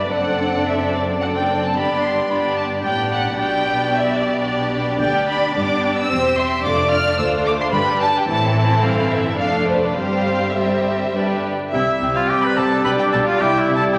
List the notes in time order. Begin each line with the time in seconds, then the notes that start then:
Already playing: D5
0.10 F#1 F#2 C4 D4 A4 D5 F#5
0.67 E5
0.94 D5
1.21 C4 D4 A4 D5 F#5
1.35 G5
1.63 A5
1.76 G1 G2 B3 D4 G4 D5 B5
2.03 C6
2.29 B3 D4 G4 D5 B5
2.57 A5
2.84 A1 A2 B3 D4 G4 D5 G5
3.11 F#5
3.37 B1 B2 B3 D4 G4 D5 G5
3.92 E5
4.19 D5
5.00 D2 B3 D4 G4 D5 G5
5.28 B5
5.55 G1 G2 B3 G4 D6
5.97 E6
6.10 E1 E2 C4 G4 C5
6.36 E5 C6
6.64 F1 F2 A3 D4 F4 D5 D6
6.91 F6
7.18 D2 A3 F4 C5 E6
7.46 D6
7.59 C6
7.72 G1 G2 G3 D4 G4 B4 B5
8.00 A5
8.16 G5
8.28 A1 A2 E3 C4 E4 A4 A5
8.57 A5
8.83 G1 G2 F5
9.11 E5
9.38 F1 F2 A3 D4 A4 F5
9.67 B4 C5
9.83 D5
9.96 G1 G2 G3 C4 G4 C5 F5
10.57 G3 C4 G4 C5 E5
11.15 G1 G2 G3 D4 G4 B4
11.72 C2 C3 G3 C4 E4 G4 E5 G5
12.01 C2 C3 G5
12.15 F4 F5
12.29 C2 C3 C4 G4 G5
12.42 B4 B5
12.56 C2 C3 A4 G5 A5
12.84 B1 B2 D4 B4 G5 B5
12.99 G4 G5
13.12 B1 B2 A4 G5 A5
13.26 F4 F5
13.39 C2 C3 E4 G4 E5 G5
13.57 E4 E5
13.68 C2 C3 E5
13.75 A4 A5
13.93 C2 C3 C4 G4 E5 G5